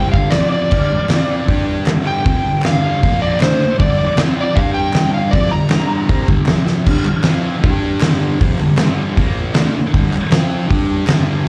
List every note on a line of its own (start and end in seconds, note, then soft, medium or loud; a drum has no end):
0.00 0.12 C3 medium
0.00 0.13 G3 loud
0.00 0.13 C4 medium
0.00 0.11 G5 medium
0.12 0.30 G2 medium
0.12 0.32 D3 loud
0.12 0.32 G3 loud
0.12 0.31 F5 medium
0.12 kick loud
0.30 0.70 F2 loud
0.30 0.70 C3 medium
0.30 0.71 F3 loud
0.30 0.50 D5 medium
0.30 snare loud
0.30 clap medium
0.30 open hi-hat medium
0.52 1.64 D5 loud
0.71 0.90 G2 loud
0.71 0.90 D3 loud
0.71 0.91 G3 medium
0.71 kick loud
0.71 crash loud
0.93 muted distorted electric guitar stroke medium
1.09 1.47 F3 loud
1.09 1.48 C4 medium
1.09 1.49 F4 medium
1.09 snare loud
1.09 clap medium
1.09 open hi-hat medium
1.48 1.87 G3 medium
1.48 1.87 D4 medium
1.48 1.87 G4 loud
1.48 kick loud
1.48 open hi-hat medium
1.86 2.24 G2 medium
1.86 2.25 D3 medium
1.86 2.25 G3 medium
1.86 snare loud
1.86 clap medium
1.86 open hi-hat medium
2.07 2.63 G5 loud
2.24 2.43 F2 medium
2.24 2.44 C3 loud
2.24 2.44 F3 loud
2.24 kick loud
2.24 open hi-hat medium
2.44 2.60 G2 medium
2.44 2.60 D3 medium
2.62 3.02 G2 medium
2.62 3.21 F5 loud
2.62 snare loud
2.62 clap medium
2.62 open hi-hat medium
2.66 3.03 D3 medium
2.66 3.04 G3 loud
3.03 3.40 A#2 loud
3.03 3.41 F3 loud
3.03 3.42 A#3 loud
3.03 kick loud
3.03 open hi-hat medium
3.22 3.41 D5 loud
3.40 3.60 D3 medium
3.40 3.60 A3 loud
3.40 3.60 D4 loud
3.40 3.79 C5 medium
3.40 snare loud
3.40 clap medium
3.40 open hi-hat medium
3.62 muted distorted electric guitar stroke medium
3.77 3.97 G2 loud
3.77 3.97 D3 loud
3.77 3.98 G3 loud
3.77 4.17 D5 loud
3.77 kick loud
3.77 open hi-hat medium
4.01 muted distorted electric guitar stroke medium
4.16 4.55 F3 medium
4.16 4.54 C4 loud
4.16 4.55 F4 loud
4.16 snare loud
4.16 clap medium
4.16 open hi-hat medium
4.41 4.58 D5 loud
4.55 4.93 G3 medium
4.55 4.94 D4 loud
4.55 4.94 G4 loud
4.55 4.74 F5 medium
4.55 kick loud
4.55 open hi-hat medium
4.74 5.12 G5 loud
4.93 5.31 G2 loud
4.93 5.32 D3 medium
4.93 5.33 G3 medium
4.93 snare loud
4.93 clap medium
4.93 open hi-hat medium
5.14 5.33 F5 medium
5.31 5.50 F2 loud
5.31 5.51 C3 loud
5.31 5.52 F3 loud
5.31 5.51 D5 loud
5.31 kick loud
5.31 open hi-hat medium
5.51 5.67 G2 medium
5.51 5.67 D3 medium
5.51 6.26 A#5 medium
5.69 6.08 G2 loud
5.69 6.08 D3 loud
5.69 6.08 G3 loud
5.69 snare loud
5.69 clap medium
5.69 open hi-hat medium
6.09 6.28 C3 medium
6.09 6.28 G3 loud
6.09 6.29 C4 loud
6.09 kick loud
6.09 open hi-hat medium
6.28 6.46 G2 loud
6.28 6.48 D3 loud
6.28 6.48 G3 loud
6.28 kick loud
6.46 6.85 F2 loud
6.46 6.86 C3 medium
6.46 6.86 F3 loud
6.46 snare loud
6.46 clap loud
6.46 open hi-hat medium
6.66 snare medium
6.86 7.04 G2 medium
6.86 7.06 D3 loud
6.86 7.06 G3 loud
6.86 kick loud
6.86 crash loud
7.05 muted distorted electric guitar stroke medium
7.05 clap medium
7.22 7.61 F3 loud
7.22 7.62 C4 medium
7.22 7.63 F4 loud
7.22 snare loud
7.22 clap loud
7.22 open hi-hat medium
7.62 8.00 G3 loud
7.62 8.01 D4 loud
7.62 8.01 G4 loud
7.62 kick loud
7.62 open hi-hat medium
8.00 8.39 G2 medium
8.00 8.39 D3 medium
8.00 8.39 G3 loud
8.00 snare loud
8.00 clap loud
8.00 open hi-hat medium
8.39 8.58 F2 loud
8.39 8.59 C3 medium
8.39 8.59 F3 loud
8.39 kick loud
8.39 open hi-hat medium
8.59 8.75 G2 medium
8.59 8.74 D3 medium
8.59 clap medium
8.78 9.17 G2 medium
8.78 snare loud
8.78 clap medium
8.78 open hi-hat medium
8.82 9.15 D3 medium
8.82 9.16 G3 loud
9.16 9.54 A#2 medium
9.16 9.54 F3 loud
9.16 9.54 A#3 loud
9.16 kick loud
9.16 open hi-hat medium
9.54 9.73 D3 medium
9.54 9.73 A3 medium
9.54 9.74 D4 loud
9.54 snare loud
9.54 clap medium
9.54 open hi-hat medium
9.74 muted distorted electric guitar stroke medium
9.93 10.09 G2 loud
9.93 10.11 D3 medium
9.93 10.13 G3 loud
9.93 kick loud
9.93 open hi-hat medium
10.10 muted distorted electric guitar stroke medium
10.10 clap medium
10.30 10.68 F3 medium
10.30 10.68 C4 loud
10.30 10.68 F4 loud
10.30 snare loud
10.30 clap medium
10.30 open hi-hat medium
10.68 11.05 G3 medium
10.68 11.07 D4 medium
10.68 11.07 G4 loud
10.68 kick loud
10.68 open hi-hat medium
11.05 11.44 G2 medium
11.05 11.44 D3 medium
11.05 11.45 G3 loud
11.05 snare loud
11.05 clap medium
11.05 open hi-hat medium
11.44 11.48 F2 medium
11.44 11.48 C3 loud